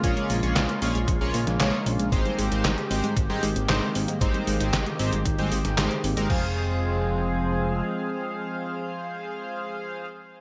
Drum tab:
CC |----------------|----------------|----------------|x---------------|
HH |xxoxxxoxx-oxx-ox|xxoxxxoxx-oxx-ox|xxoxxxoxxxoxxxox|----------------|
CP |----x-------x---|----x-------x---|----x-------x---|----------------|
SD |----o------oo---|----o-------o---|----o------oo---|----------------|
BD |o-------o-------|o-------o-------|o-------o-------|o---------------|

CC |----------------|
HH |----------------|
CP |----------------|
SD |----------------|
BD |----------------|